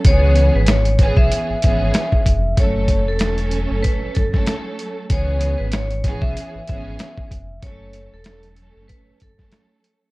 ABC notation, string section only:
X:1
M:4/4
L:1/16
Q:"Swing 16ths" 1/4=95
K:F#m
V:1 name="String section"
[E,B,CG]4- [E,B,CG] z [E,B,CG]4 [E,B,CG]4 z2 | [F,A,CA]4 [F,A,CA]6 z [F,A,CA]4- [F,A,CA] | [E,B,CG]4- [E,B,CG] z [E,B,CG]4 [E,B,CG]4 z2 | [F,A,CA]4 [F,A,CA]6 z [F,A,CA]4- [F,A,CA] |]